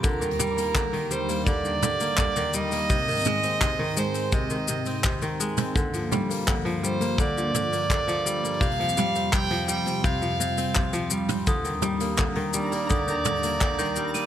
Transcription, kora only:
X:1
M:4/4
L:1/16
Q:1/4=84
K:Eb
V:1 name="Kora" clef=bass
D, E, G, B, D, E, G, B, D, E, D, B, D, E, G, B, | C, E, A, C C, E, A, C C, E, C, C C, E, A, C | D, F, G, B, D, F, G, B, D, F, D, B, D, F, G, B, | C, F, G, C C, F, G, C C, F, C, C C, F, G, C |
D, E, G, B, D, E, G, B, D, E, D, B, D, E, G, B, |]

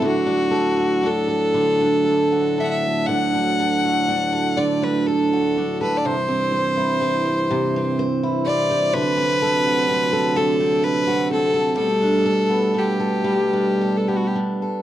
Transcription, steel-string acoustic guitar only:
X:1
M:3/4
L:1/16
Q:1/4=61
K:Dmix
V:1 name="Steel-string acoustic guitar"
D, D A F D A D, D A F D A | D, D A F D A D, D A F D A | C, C c E C c C, C c E C c | D, C A F C A D, C A F C A |
G, D A B, D A G, D A B, D A |]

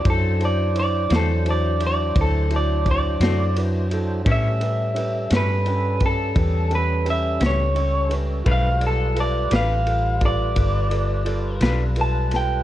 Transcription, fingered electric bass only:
X:1
M:12/8
L:1/8
Q:3/8=57
K:Ador
V:1 name="Fingered electric bass" clef=bass
F,,3 E,,3 D,,3 F,,3 | A,,3 G,,3 E,,3 ^C,,3 | B,,,3 A,,,3 G,,,3 B,,,3 |]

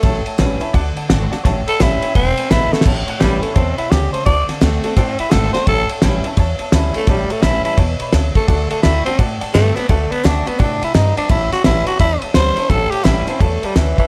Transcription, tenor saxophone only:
X:1
M:4/4
L:1/8
Q:"Swing" 1/4=170
K:Amix
V:1 name="Tenor saxophone"
A, z6 z | z A E2 =C2 E A, | z2 G, A, =C E G =c | d z A, A, =C E A =c |
A z6 A, | G, A, E E z3 A, | A, A, E =C z2 A, B, | A, B, D B, D E ^D =D |
E F E F E z =c2 | A G E =C A, G, E, E, |]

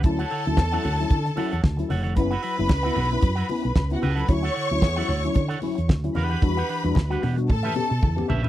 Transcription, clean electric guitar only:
X:1
M:4/4
L:1/16
Q:"Swing 16ths" 1/4=113
K:D
V:1 name="Clean electric guitar"
z [EAcf] [EAcf] z2 [EAcf] [EAcf] z3 [EAcf] [EAcf] z2 [EAcf] [EAcf] | z [EFBf] [EFBf] z2 [EFBf] [EFBf] z2 [EFBf] z4 [EFBf] [EFBf] | z [EAcf] [EAcf] z2 [EAcf] [EAcf] z2 [EAcf] z4 [DGBf] [DGBf] | z [DGBf] [DGBf] z2 [DGBf] [DGBf] z2 [CGBe] z4 [CGBe] [CGBe] |]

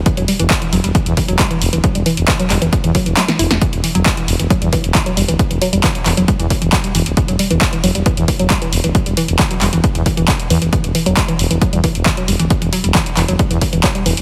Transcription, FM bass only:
X:1
M:4/4
L:1/16
Q:1/4=135
K:Em
V:1 name="FM bass" clef=bass
z E,,, z E,,, z2 E,,, E,,, z E,, z E,,, z2 E,,, D,,, | z E,,, z E,,, z2 E,,, E,,, z E,, z E,,, z2 E,,, E,,, | z E,,, z E,,, z2 E,,, E,,, z E,, z E,,, z2 E,,, D,,, | z E,,, z E,,, z2 E,,, E,,, z E,, z E,,, z2 E,,, D,,, |
z E,,, z E,,, z2 E,,, E,,, z E,, z E,,, z2 E,,, D,,, | z E,,, z E,,, z2 E,,, E,,, z E,, z E,,, z2 E,, E,,, | z E,,, z E,,, z2 E,,, E,,, z E,, z E,,, z2 E,,, D,,, | z E,,, z E,,, z2 E,,, E,,, z E,, z E,,, z2 E,,, D,,, |]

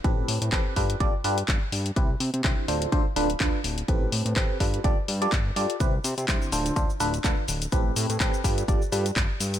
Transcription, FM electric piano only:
X:1
M:4/4
L:1/16
Q:"Swing 16ths" 1/4=125
K:Gmix
V:1 name="FM electric piano"
[A,,CGAB]4 [CGAB]2 [G,FGAB]2 [G,FGAd] z [G,FGAB] z4 z | [C,CEGB] z3 [D,CEGc]2 [D,DFAc]2 [D,DFAc] z [D,DFAB] z [D,DFAB]2 z2 | [A,,CGAB]4 [CGAB]2 [G,FGAB]2 [G,FGAd] z2 [G,FGAd] z2 [FGAd]2 | [C,CEGB] z3 [D,CEGc]2 [D,DFAc]2 [D,DFAc] z [D,DFAB] z [D,DFAB]2 z2 |
[A,,CGAB]4 [CGAB]2 [G,FGAB]2 [G,FGAd] z [G,FGAB] z4 z |]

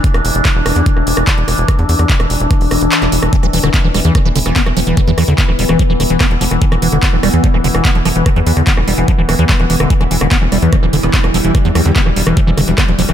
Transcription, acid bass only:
X:1
M:4/4
L:1/16
Q:1/4=146
K:Em
V:1 name="Acid bass" clef=bass
z16 | z16 | E, E, E, D, B, E, G, E, =F, E, D, E, B, F, F, E, | E, E, E, D, B, E, G, E, =F, E, D, E, B, F, F, E, |
E, E, E, D, B, E, G, E, =F, E, D, E, B, F, F, E, | z E, E, D, B, E, G, E, =F, E, E, E, G, E, E, D, | E, E, E, D, B, E, G, E, =F, E, D, E, B, F, F, E, | E, E, E, D, B, E, G, E, =F, E, D, E, B, F, F, E, |]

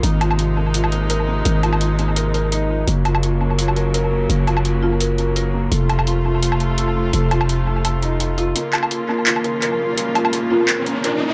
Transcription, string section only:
X:1
M:4/4
L:1/8
Q:"Swing 16ths" 1/4=169
K:Bbm
V:1 name="String section" clef=bass
[C,A,E]8- | [C,A,E]8 | [D,G,B,]8- | [D,G,B,]8 |
[C,=A,F]8- | [C,=A,F]8 | [D,B,F]8- | [D,B,F]8 |]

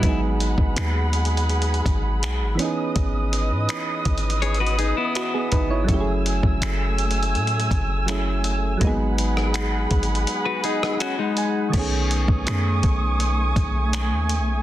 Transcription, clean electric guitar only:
X:1
M:4/4
L:1/16
Q:1/4=82
K:Bmix
V:1 name="Clean electric guitar"
[B,E] z12 z3 | z8 [Gc] [FB] [DG] [B,E]4- [B,E] | z16 | z8 z [FB] [DG]2 [CF] [G,D]3 |
z16 |]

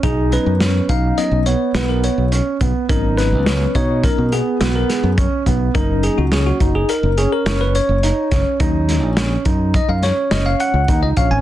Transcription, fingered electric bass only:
X:1
M:5/4
L:1/16
Q:1/4=105
K:Blyd
V:1 name="Fingered electric bass" clef=bass
B,,,3 F,,3 B,,,2 z B,,,2 z B,,,3 B,,,2 z B,,, z | G,,,3 C,,3 B,,3 B,,2 z B,,,2 z F,,2 z B,,,2 | F,,,3 C,,3 F,,,2 z F,,,2 z F,,,3 F,,,2 z F,,, z | D,,3 A,,,3 F,,3 F,,2 z F,,,2 z C,, D,, C,, A,,, G,,, |]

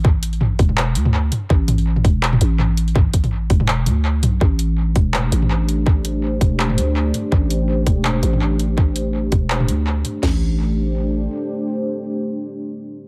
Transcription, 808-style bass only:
X:1
M:4/4
L:1/8
Q:"Swing 16ths" 1/4=165
K:Am
V:1 name="808-style bass" clef=bass
A,,,3 E,,,2 D,,2 z | A,,,3 E,,,2 A,,,3- | A,,,3 E,,,2 D,,2 B,,, | A,,,3 E,,,2 A,,,3- |
A,,,3 E,,,2 D,,2 z | A,,,3 E,,,2 A,,,3- | A,,,3 E,,,2 D,,2 z | A,,,6 z2 |
z8 |]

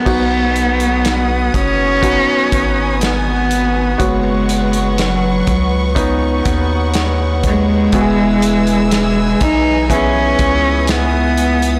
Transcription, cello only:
X:1
M:4/4
L:1/8
Q:1/4=61
K:B
V:1 name="Cello"
B,3 C3 B,2 | G,2 F,2 z3 G,- | G,3 D C2 B,2 |]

